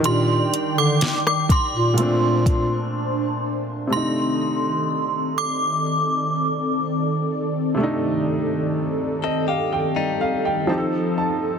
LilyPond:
<<
  \new Staff \with { instrumentName = "Synth bell" } { \time 4/4 \key c \dorian \tempo 4 = 62 c'''8. d'''8 d'''16 c'''2 r8 | c'''4. d'''2 r8 | r1 | }
  \new Staff \with { instrumentName = "Analog synth pad" } { \time 4/4 \key c \dorian <ees d'' g''>2 <d' c'' a''>2 | <ees c' a' d''>1~ | <ees c' a' d''>2. <f ees'>4 | }
  \new Staff \with { instrumentName = "Clean electric guitar" } { \time 4/4 \key c \dorian r1 | r1 | r4. <c' a'>16 g'8 <g ees'>8. r4 | }
  \new Staff \with { instrumentName = "Grand piano" } { \time 4/4 \key c \dorian << { r1 | r1 | r4. ees''16 f''16 g''8 f''16 g''16 a''8 a''8 | } \\ { <ees g d'>2 <bes, a c' d'>2 | <c a d' ees'>1 | <c a d' ees'>2. <f c' ees' g' a'>4 | } >> }
  \new Staff \with { instrumentName = "Bass clarinet" } { \clef bass \time 4/4 \key c \dorian bes,8 r16 d16 r8 bes,16 bes,16 bes,4 r4 | r1 | r1 | }
  \new DrumStaff \with { instrumentName = "Drums" } \drummode { \time 4/4 hh8 hh8 <hh sn>16 ss16 <hh bd>8 hh8 <hh bd>8 r4 | r4 r4 r4 r4 | r4 r4 r4 r4 | }
>>